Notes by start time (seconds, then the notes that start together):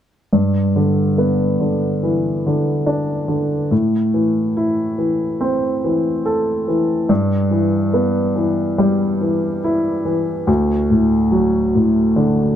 0.33 G2
0.76 D3
1.18 B3
1.60 D3
2.03 E3
2.46 D3
2.86 D4
3.28 D3
3.71 A2
4.14 E3
4.57 E4
4.98 E3
5.41 C4
5.84 E3
6.25 A4
6.68 E3
7.09 G2
7.51 E3
7.94 B3
8.36 E3
8.78 G3
9.21 E3
9.64 E4
10.05 E3
10.47 D2
10.90 A2
11.32 F#3
11.75 A2
12.16 D3